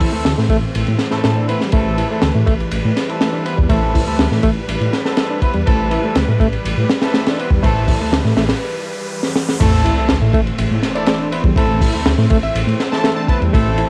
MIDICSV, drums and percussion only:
0, 0, Header, 1, 2, 480
1, 0, Start_track
1, 0, Key_signature, 0, "minor"
1, 0, Tempo, 491803
1, 1690, Time_signature, 4, 2, 24, 8
1, 13559, End_track
2, 0, Start_track
2, 0, Title_t, "Drums"
2, 5, Note_on_c, 9, 46, 78
2, 9, Note_on_c, 9, 36, 82
2, 102, Note_off_c, 9, 46, 0
2, 107, Note_off_c, 9, 36, 0
2, 245, Note_on_c, 9, 38, 107
2, 252, Note_on_c, 9, 51, 90
2, 342, Note_off_c, 9, 38, 0
2, 350, Note_off_c, 9, 51, 0
2, 375, Note_on_c, 9, 38, 45
2, 473, Note_off_c, 9, 38, 0
2, 477, Note_on_c, 9, 36, 99
2, 483, Note_on_c, 9, 51, 73
2, 575, Note_off_c, 9, 36, 0
2, 581, Note_off_c, 9, 51, 0
2, 729, Note_on_c, 9, 51, 90
2, 827, Note_off_c, 9, 51, 0
2, 845, Note_on_c, 9, 51, 38
2, 942, Note_off_c, 9, 51, 0
2, 962, Note_on_c, 9, 38, 57
2, 964, Note_on_c, 9, 51, 72
2, 1060, Note_off_c, 9, 38, 0
2, 1061, Note_off_c, 9, 51, 0
2, 1081, Note_on_c, 9, 38, 48
2, 1179, Note_off_c, 9, 38, 0
2, 1206, Note_on_c, 9, 51, 76
2, 1209, Note_on_c, 9, 38, 105
2, 1304, Note_off_c, 9, 51, 0
2, 1306, Note_off_c, 9, 38, 0
2, 1451, Note_on_c, 9, 51, 62
2, 1549, Note_off_c, 9, 51, 0
2, 1570, Note_on_c, 9, 38, 42
2, 1667, Note_off_c, 9, 38, 0
2, 1678, Note_on_c, 9, 51, 81
2, 1687, Note_on_c, 9, 36, 115
2, 1776, Note_off_c, 9, 51, 0
2, 1785, Note_off_c, 9, 36, 0
2, 1931, Note_on_c, 9, 51, 68
2, 2029, Note_off_c, 9, 51, 0
2, 2164, Note_on_c, 9, 38, 116
2, 2167, Note_on_c, 9, 51, 83
2, 2261, Note_off_c, 9, 38, 0
2, 2265, Note_off_c, 9, 51, 0
2, 2411, Note_on_c, 9, 51, 68
2, 2412, Note_on_c, 9, 36, 97
2, 2508, Note_off_c, 9, 51, 0
2, 2509, Note_off_c, 9, 36, 0
2, 2539, Note_on_c, 9, 51, 44
2, 2636, Note_off_c, 9, 51, 0
2, 2648, Note_on_c, 9, 51, 89
2, 2745, Note_off_c, 9, 51, 0
2, 2895, Note_on_c, 9, 51, 77
2, 2896, Note_on_c, 9, 38, 53
2, 2993, Note_off_c, 9, 38, 0
2, 2993, Note_off_c, 9, 51, 0
2, 3019, Note_on_c, 9, 51, 47
2, 3117, Note_off_c, 9, 51, 0
2, 3131, Note_on_c, 9, 38, 104
2, 3136, Note_on_c, 9, 51, 84
2, 3229, Note_off_c, 9, 38, 0
2, 3233, Note_off_c, 9, 51, 0
2, 3374, Note_on_c, 9, 51, 69
2, 3472, Note_off_c, 9, 51, 0
2, 3497, Note_on_c, 9, 36, 96
2, 3595, Note_off_c, 9, 36, 0
2, 3606, Note_on_c, 9, 51, 91
2, 3607, Note_on_c, 9, 36, 118
2, 3704, Note_off_c, 9, 51, 0
2, 3705, Note_off_c, 9, 36, 0
2, 3855, Note_on_c, 9, 36, 89
2, 3856, Note_on_c, 9, 46, 75
2, 3953, Note_off_c, 9, 36, 0
2, 3953, Note_off_c, 9, 46, 0
2, 4088, Note_on_c, 9, 51, 81
2, 4089, Note_on_c, 9, 38, 114
2, 4185, Note_off_c, 9, 51, 0
2, 4187, Note_off_c, 9, 38, 0
2, 4213, Note_on_c, 9, 38, 45
2, 4311, Note_off_c, 9, 38, 0
2, 4321, Note_on_c, 9, 51, 74
2, 4325, Note_on_c, 9, 36, 84
2, 4419, Note_off_c, 9, 51, 0
2, 4422, Note_off_c, 9, 36, 0
2, 4572, Note_on_c, 9, 51, 89
2, 4669, Note_off_c, 9, 51, 0
2, 4696, Note_on_c, 9, 51, 42
2, 4794, Note_off_c, 9, 51, 0
2, 4811, Note_on_c, 9, 38, 53
2, 4811, Note_on_c, 9, 51, 62
2, 4909, Note_off_c, 9, 38, 0
2, 4909, Note_off_c, 9, 51, 0
2, 4930, Note_on_c, 9, 38, 47
2, 5028, Note_off_c, 9, 38, 0
2, 5042, Note_on_c, 9, 51, 82
2, 5048, Note_on_c, 9, 38, 92
2, 5140, Note_off_c, 9, 51, 0
2, 5146, Note_off_c, 9, 38, 0
2, 5287, Note_on_c, 9, 51, 65
2, 5288, Note_on_c, 9, 36, 82
2, 5384, Note_off_c, 9, 51, 0
2, 5386, Note_off_c, 9, 36, 0
2, 5401, Note_on_c, 9, 51, 38
2, 5498, Note_off_c, 9, 51, 0
2, 5533, Note_on_c, 9, 51, 79
2, 5537, Note_on_c, 9, 36, 112
2, 5630, Note_off_c, 9, 51, 0
2, 5635, Note_off_c, 9, 36, 0
2, 5768, Note_on_c, 9, 51, 64
2, 5866, Note_off_c, 9, 51, 0
2, 6005, Note_on_c, 9, 51, 89
2, 6010, Note_on_c, 9, 38, 115
2, 6103, Note_off_c, 9, 51, 0
2, 6107, Note_off_c, 9, 38, 0
2, 6245, Note_on_c, 9, 36, 91
2, 6252, Note_on_c, 9, 51, 71
2, 6342, Note_off_c, 9, 36, 0
2, 6350, Note_off_c, 9, 51, 0
2, 6370, Note_on_c, 9, 51, 43
2, 6468, Note_off_c, 9, 51, 0
2, 6494, Note_on_c, 9, 51, 90
2, 6591, Note_off_c, 9, 51, 0
2, 6731, Note_on_c, 9, 38, 113
2, 6739, Note_on_c, 9, 51, 78
2, 6828, Note_off_c, 9, 38, 0
2, 6836, Note_off_c, 9, 51, 0
2, 6849, Note_on_c, 9, 38, 110
2, 6856, Note_on_c, 9, 51, 73
2, 6947, Note_off_c, 9, 38, 0
2, 6954, Note_off_c, 9, 51, 0
2, 6969, Note_on_c, 9, 38, 101
2, 6972, Note_on_c, 9, 51, 79
2, 7067, Note_off_c, 9, 38, 0
2, 7070, Note_off_c, 9, 51, 0
2, 7090, Note_on_c, 9, 51, 76
2, 7096, Note_on_c, 9, 38, 104
2, 7188, Note_off_c, 9, 51, 0
2, 7193, Note_off_c, 9, 38, 0
2, 7217, Note_on_c, 9, 51, 63
2, 7314, Note_off_c, 9, 51, 0
2, 7325, Note_on_c, 9, 36, 103
2, 7423, Note_off_c, 9, 36, 0
2, 7452, Note_on_c, 9, 36, 111
2, 7456, Note_on_c, 9, 51, 91
2, 7550, Note_off_c, 9, 36, 0
2, 7553, Note_off_c, 9, 51, 0
2, 7691, Note_on_c, 9, 36, 94
2, 7692, Note_on_c, 9, 46, 76
2, 7788, Note_off_c, 9, 36, 0
2, 7789, Note_off_c, 9, 46, 0
2, 7933, Note_on_c, 9, 38, 122
2, 7938, Note_on_c, 9, 51, 92
2, 8031, Note_off_c, 9, 38, 0
2, 8036, Note_off_c, 9, 51, 0
2, 8055, Note_on_c, 9, 38, 50
2, 8152, Note_off_c, 9, 38, 0
2, 8168, Note_on_c, 9, 38, 101
2, 8171, Note_on_c, 9, 51, 75
2, 8265, Note_off_c, 9, 38, 0
2, 8268, Note_off_c, 9, 51, 0
2, 8285, Note_on_c, 9, 38, 106
2, 8288, Note_on_c, 9, 51, 89
2, 8382, Note_off_c, 9, 38, 0
2, 8386, Note_off_c, 9, 51, 0
2, 9007, Note_on_c, 9, 38, 51
2, 9105, Note_off_c, 9, 38, 0
2, 9131, Note_on_c, 9, 38, 90
2, 9228, Note_off_c, 9, 38, 0
2, 9258, Note_on_c, 9, 38, 79
2, 9356, Note_off_c, 9, 38, 0
2, 9371, Note_on_c, 9, 49, 103
2, 9373, Note_on_c, 9, 51, 102
2, 9374, Note_on_c, 9, 36, 106
2, 9469, Note_off_c, 9, 49, 0
2, 9470, Note_off_c, 9, 51, 0
2, 9472, Note_off_c, 9, 36, 0
2, 9618, Note_on_c, 9, 51, 75
2, 9716, Note_off_c, 9, 51, 0
2, 9845, Note_on_c, 9, 38, 112
2, 9856, Note_on_c, 9, 51, 93
2, 9943, Note_off_c, 9, 38, 0
2, 9953, Note_off_c, 9, 51, 0
2, 10086, Note_on_c, 9, 36, 94
2, 10093, Note_on_c, 9, 51, 66
2, 10184, Note_off_c, 9, 36, 0
2, 10191, Note_off_c, 9, 51, 0
2, 10218, Note_on_c, 9, 51, 43
2, 10315, Note_off_c, 9, 51, 0
2, 10330, Note_on_c, 9, 51, 92
2, 10427, Note_off_c, 9, 51, 0
2, 10567, Note_on_c, 9, 38, 47
2, 10572, Note_on_c, 9, 51, 75
2, 10664, Note_off_c, 9, 38, 0
2, 10670, Note_off_c, 9, 51, 0
2, 10692, Note_on_c, 9, 51, 45
2, 10789, Note_off_c, 9, 51, 0
2, 10799, Note_on_c, 9, 51, 82
2, 10808, Note_on_c, 9, 38, 119
2, 10896, Note_off_c, 9, 51, 0
2, 10906, Note_off_c, 9, 38, 0
2, 11051, Note_on_c, 9, 51, 69
2, 11149, Note_off_c, 9, 51, 0
2, 11166, Note_on_c, 9, 36, 109
2, 11264, Note_off_c, 9, 36, 0
2, 11284, Note_on_c, 9, 36, 126
2, 11295, Note_on_c, 9, 51, 85
2, 11382, Note_off_c, 9, 36, 0
2, 11392, Note_off_c, 9, 51, 0
2, 11529, Note_on_c, 9, 36, 95
2, 11532, Note_on_c, 9, 46, 89
2, 11627, Note_off_c, 9, 36, 0
2, 11630, Note_off_c, 9, 46, 0
2, 11766, Note_on_c, 9, 51, 82
2, 11768, Note_on_c, 9, 38, 127
2, 11863, Note_off_c, 9, 51, 0
2, 11866, Note_off_c, 9, 38, 0
2, 11891, Note_on_c, 9, 38, 46
2, 11988, Note_off_c, 9, 38, 0
2, 12004, Note_on_c, 9, 51, 72
2, 12013, Note_on_c, 9, 36, 105
2, 12102, Note_off_c, 9, 51, 0
2, 12110, Note_off_c, 9, 36, 0
2, 12252, Note_on_c, 9, 51, 88
2, 12350, Note_off_c, 9, 51, 0
2, 12380, Note_on_c, 9, 51, 42
2, 12478, Note_off_c, 9, 51, 0
2, 12491, Note_on_c, 9, 38, 48
2, 12493, Note_on_c, 9, 51, 67
2, 12589, Note_off_c, 9, 38, 0
2, 12590, Note_off_c, 9, 51, 0
2, 12616, Note_on_c, 9, 38, 51
2, 12714, Note_off_c, 9, 38, 0
2, 12726, Note_on_c, 9, 38, 96
2, 12731, Note_on_c, 9, 51, 75
2, 12824, Note_off_c, 9, 38, 0
2, 12829, Note_off_c, 9, 51, 0
2, 12965, Note_on_c, 9, 36, 82
2, 12971, Note_on_c, 9, 51, 62
2, 13062, Note_off_c, 9, 36, 0
2, 13069, Note_off_c, 9, 51, 0
2, 13096, Note_on_c, 9, 51, 37
2, 13193, Note_off_c, 9, 51, 0
2, 13215, Note_on_c, 9, 36, 117
2, 13220, Note_on_c, 9, 51, 93
2, 13313, Note_off_c, 9, 36, 0
2, 13317, Note_off_c, 9, 51, 0
2, 13445, Note_on_c, 9, 51, 66
2, 13543, Note_off_c, 9, 51, 0
2, 13559, End_track
0, 0, End_of_file